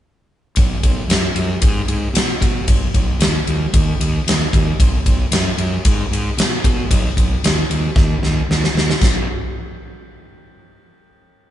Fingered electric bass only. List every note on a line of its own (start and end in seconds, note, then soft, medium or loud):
0.57 0.76 B1 medium
0.84 1.02 B1 medium
1.08 1.27 F#2 medium
1.35 1.54 F#2 medium
1.62 1.81 G#2 medium
1.88 2.07 G#2 medium
2.13 2.32 B2 medium
2.41 2.60 B2 medium
2.68 2.86 B1 medium
2.94 3.12 B1 medium
3.20 3.38 D#2 medium
3.47 3.65 D#2 medium
3.73 3.92 D#2 medium
4.00 4.18 D#2 loud
4.27 4.45 D#2 loud
4.53 4.71 D#2 loud
4.79 4.98 B1 medium
5.06 5.24 B1 medium
5.31 5.50 F#2 medium
5.58 5.76 F#2 medium
5.86 6.04 G#2 medium
6.11 6.29 G#2 medium
6.37 6.56 B2 medium
6.64 6.83 B2 loud
6.90 7.08 B1 loud
7.17 7.35 B1 medium
7.44 7.62 D#2 medium
7.70 7.88 D#2 medium
7.95 8.14 D#2 medium
8.22 8.40 D#2 medium
8.49 8.67 D#2 medium
8.74 8.93 D#2 medium
9.02 9.26 B1 medium